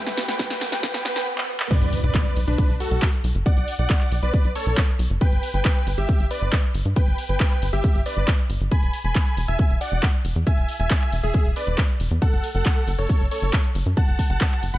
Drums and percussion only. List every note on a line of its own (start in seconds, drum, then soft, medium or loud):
0.07 snare medium
0.07 closed hi-hat soft
0.17 snare loud
0.17 open hi-hat loud
0.28 snare medium
0.39 kick loud
0.39 snare loud
0.39 closed hi-hat medium
0.50 snare medium
0.50 closed hi-hat soft
0.61 snare loud
0.61 open hi-hat loud
0.72 snare medium
0.72 closed hi-hat soft
0.83 kick loud
0.83 snare loud
0.83 closed hi-hat medium
0.94 snare medium
0.94 closed hi-hat soft
1.05 snare loud
1.05 open hi-hat loud
1.16 snare medium
1.16 closed hi-hat soft
1.38 clap medium
1.60 clap loud
1.71 kick loud
1.71 closed hi-hat loud
1.71 crash loud
1.71 shaker soft
1.82 closed hi-hat soft
1.82 shaker soft
1.93 open hi-hat loud
1.93 shaker medium
2.04 closed hi-hat soft
2.04 shaker soft
2.15 kick loud
2.15 clap loud
2.15 closed hi-hat loud
2.15 shaker soft
2.26 closed hi-hat soft
2.26 shaker soft
2.37 open hi-hat loud
2.37 shaker medium
2.47 closed hi-hat soft
2.47 shaker soft
2.58 kick loud
2.58 closed hi-hat medium
2.58 shaker soft
2.69 closed hi-hat soft
2.69 shaker soft
2.80 open hi-hat loud
2.80 shaker medium
2.91 closed hi-hat soft
2.91 shaker soft
3.02 kick loud
3.02 clap loud
3.02 closed hi-hat loud
3.02 shaker soft
3.13 closed hi-hat soft
3.13 shaker soft
3.24 open hi-hat loud
3.24 shaker medium
3.35 closed hi-hat soft
3.35 shaker soft
3.46 kick loud
3.46 closed hi-hat loud
3.46 shaker soft
3.57 closed hi-hat soft
3.57 shaker soft
3.68 open hi-hat loud
3.68 shaker medium
3.79 shaker soft
3.90 kick loud
3.90 clap loud
3.90 closed hi-hat medium
3.90 shaker soft
4.01 clap soft
4.01 closed hi-hat soft
4.01 shaker soft
4.12 open hi-hat loud
4.12 shaker medium
4.23 closed hi-hat soft
4.23 shaker soft
4.34 kick loud
4.34 closed hi-hat medium
4.34 shaker soft
4.45 closed hi-hat soft
4.45 shaker soft
4.56 open hi-hat loud
4.56 shaker medium
4.66 closed hi-hat soft
4.66 shaker soft
4.77 kick loud
4.77 clap loud
4.77 closed hi-hat medium
4.77 shaker soft
4.88 closed hi-hat soft
4.88 shaker soft
4.99 open hi-hat loud
4.99 shaker medium
5.10 closed hi-hat soft
5.10 shaker soft
5.21 kick loud
5.21 closed hi-hat medium
5.21 shaker soft
5.32 closed hi-hat soft
5.32 shaker soft
5.43 open hi-hat loud
5.43 shaker medium
5.54 closed hi-hat soft
5.54 shaker soft
5.65 kick loud
5.65 clap loud
5.65 closed hi-hat medium
5.65 shaker soft
5.76 closed hi-hat soft
5.76 shaker soft
5.87 open hi-hat loud
5.87 shaker medium
5.98 closed hi-hat soft
5.98 shaker soft
6.09 kick loud
6.09 closed hi-hat medium
6.09 shaker soft
6.20 closed hi-hat soft
6.20 shaker soft
6.31 open hi-hat loud
6.31 shaker medium
6.42 shaker soft
6.53 kick loud
6.53 clap loud
6.53 closed hi-hat medium
6.53 shaker soft
6.64 closed hi-hat soft
6.64 shaker soft
6.75 open hi-hat loud
6.75 shaker medium
6.85 closed hi-hat soft
6.85 shaker soft
6.96 kick loud
6.96 closed hi-hat medium
6.96 shaker soft
7.07 closed hi-hat soft
7.07 shaker soft
7.18 open hi-hat loud
7.18 shaker medium
7.29 closed hi-hat soft
7.29 shaker soft
7.40 kick loud
7.40 clap loud
7.40 closed hi-hat medium
7.40 shaker soft
7.51 clap soft
7.51 closed hi-hat soft
7.51 shaker soft
7.62 open hi-hat loud
7.62 shaker medium
7.73 closed hi-hat soft
7.73 shaker soft
7.84 kick loud
7.84 closed hi-hat medium
7.84 shaker soft
7.95 closed hi-hat soft
7.95 shaker soft
8.06 open hi-hat loud
8.06 shaker medium
8.17 closed hi-hat soft
8.17 shaker soft
8.28 kick loud
8.28 clap loud
8.28 closed hi-hat medium
8.28 shaker soft
8.39 closed hi-hat soft
8.39 shaker soft
8.50 open hi-hat loud
8.50 shaker medium
8.61 closed hi-hat soft
8.61 shaker soft
8.72 kick loud
8.72 closed hi-hat medium
8.72 shaker soft
8.83 closed hi-hat soft
8.83 shaker soft
8.93 open hi-hat loud
8.93 shaker medium
9.04 closed hi-hat soft
9.04 shaker soft
9.15 kick loud
9.15 clap loud
9.15 closed hi-hat medium
9.15 shaker soft
9.26 closed hi-hat soft
9.26 shaker soft
9.37 open hi-hat loud
9.37 shaker medium
9.48 closed hi-hat soft
9.48 shaker soft
9.59 kick loud
9.59 closed hi-hat medium
9.59 shaker soft
9.70 closed hi-hat soft
9.70 shaker soft
9.81 open hi-hat loud
9.81 shaker medium
9.92 shaker soft
10.03 kick loud
10.03 clap loud
10.03 closed hi-hat medium
10.03 shaker soft
10.14 closed hi-hat soft
10.14 shaker soft
10.25 open hi-hat loud
10.25 shaker medium
10.36 closed hi-hat soft
10.36 shaker soft
10.47 kick loud
10.47 closed hi-hat medium
10.47 shaker soft
10.58 closed hi-hat soft
10.58 shaker soft
10.69 open hi-hat loud
10.69 shaker medium
10.80 closed hi-hat soft
10.80 shaker soft
10.90 kick loud
10.90 clap loud
10.90 closed hi-hat medium
10.90 shaker soft
11.01 clap soft
11.01 closed hi-hat soft
11.01 shaker soft
11.12 open hi-hat loud
11.12 shaker medium
11.23 closed hi-hat soft
11.23 shaker soft
11.34 kick loud
11.34 closed hi-hat medium
11.34 shaker soft
11.45 closed hi-hat soft
11.45 shaker soft
11.56 open hi-hat loud
11.56 shaker medium
11.67 closed hi-hat soft
11.67 shaker soft
11.78 kick loud
11.78 clap loud
11.78 closed hi-hat medium
11.78 shaker soft
11.89 closed hi-hat soft
11.89 shaker soft
12.00 open hi-hat loud
12.00 shaker medium
12.11 closed hi-hat soft
12.11 shaker soft
12.22 kick loud
12.22 closed hi-hat loud
12.22 shaker soft
12.33 closed hi-hat soft
12.33 shaker soft
12.44 open hi-hat loud
12.44 shaker medium
12.55 closed hi-hat soft
12.55 shaker soft
12.66 kick loud
12.66 clap loud
12.66 closed hi-hat medium
12.66 shaker soft
12.77 closed hi-hat soft
12.77 shaker soft
12.88 open hi-hat loud
12.88 shaker medium
12.99 closed hi-hat soft
12.99 shaker soft
13.09 kick loud
13.09 closed hi-hat medium
13.09 shaker soft
13.20 closed hi-hat soft
13.20 shaker soft
13.31 open hi-hat loud
13.31 shaker medium
13.42 closed hi-hat soft
13.42 shaker soft
13.53 kick loud
13.53 clap loud
13.53 closed hi-hat loud
13.53 shaker soft
13.64 closed hi-hat soft
13.64 shaker soft
13.75 open hi-hat loud
13.75 shaker medium
13.86 closed hi-hat soft
13.86 shaker soft
13.97 kick loud
13.97 closed hi-hat loud
13.97 shaker soft
14.08 closed hi-hat soft
14.08 shaker soft
14.19 kick medium
14.19 open hi-hat loud
14.19 shaker medium
14.30 closed hi-hat soft
14.30 shaker soft
14.41 kick loud
14.41 clap loud
14.41 closed hi-hat loud
14.41 shaker soft
14.52 clap soft
14.52 closed hi-hat soft
14.52 shaker soft
14.63 open hi-hat loud
14.63 shaker medium
14.74 closed hi-hat soft
14.74 shaker soft